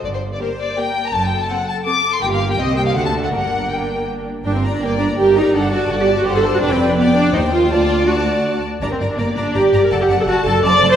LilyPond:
<<
  \new Staff \with { instrumentName = "Violin section" } { \time 3/4 \key g \minor \tempo 4 = 164 d''16 c''8 d''16 bes'8 d''8 g''8. bes''16 | a''16 g''8 a''16 fis''8 a''8 d'''8. c'''16 | g''16 f''8 g''16 ees''8 g''16 f''16 fis''16 a''8 fis''16 | fis''4 g''4 r4 |
r4 d''4 bes'4 | a'4 d''4 c''4 | b'4 d''4 c''4 | d''2~ d''8 r8 |
bes'4 d''2 | fis''4 a''4 c''4 | }
  \new Staff \with { instrumentName = "Violin section" } { \time 3/4 \key g \minor r4 c''4 bes'4 | a'2 a'4 | bes'4 c''4 a'4 | bes'2~ bes'8 r8 |
<bes' g''>8 <d'' bes''>8 <bes' g''>8 <d'' bes''>8 <bes' g''>8 <d'' bes''>8 | <a' fis''>8 <d'' a''>8 <a' fis''>8 <d'' a''>8 <a' fis''>8 <d'' a''>8 | <d'' g''>4 <d'' g''>4 <c'' g''>4 | <d'' a''>4 <d'' a''>4. r8 |
<d'' bes''>8 <d'' bes''>8 <d'' bes''>8 <d'' bes''>8 <d'' bes''>8 <d'' bes''>8 | <d'' a''>8 <d'' a''>8 <d'' a''>8 <d'' a''>8 <d'' a''>8 <d'' a''>8 | }
  \new Staff \with { instrumentName = "Viola section" } { \time 3/4 \key g \minor << { r4 g'4 g'4 | r4 a'4 a'4 | g'4 g'4 fis'4 | d'4 d'4. r8 |
d'16 c'8 d'16 bes8 d'8 g'8 ees'8 | d'8 fis'8 fis'16 g'8 fis'16 g'16 a'8 fis'16 | d'16 c'8 d'16 b8 d'8 ees'8 f'8 | f'4 fis'4. r8 |
d'16 c'8 d'16 bes8 d'8 g'8. bes'16 | a'16 g'8 a'16 fis'8 a'8 d''8. c''16 | } \\ { r4 bes4 bes4 | r4 c'4 c'4 | bes4 c'8 bes8 a4 | bes4 bes4. r8 |
r2. | r2. | r2. | r2. |
r2. | r2. | } >> }
  \new Staff \with { instrumentName = "Cello section" } { \clef bass \time 3/4 \key g \minor g,4 r2 | fis,4 r2 | g,4 c4 d4 | g,2~ g,8 r8 |
g,4 g,4 g,4 | g,4 g,4 g,4 | f,2 ees,4 | d,2~ d,8 r8 |
g,8 g,8 g,8 g,8 g,8 g,8 | fis,8 fis,8 fis,8 fis,8 fis,8 fis,8 | }
  \new Staff \with { instrumentName = "Double bass section" } { \clef bass \time 3/4 \key g \minor g,,4 r2 | fis,,4 r2 | g,,4 c,4 d,4 | g,,2~ g,,8 r8 |
g,,4 g,,4 g,,4 | g,,4 g,,4 g,,4 | f,,2 ees,4 | d,2~ d,8 r8 |
g,,8 g,,8 g,,8 g,,8 g,,8 g,,8 | fis,,8 fis,,8 fis,,8 fis,,8 fis,,8 fis,,8 | }
>>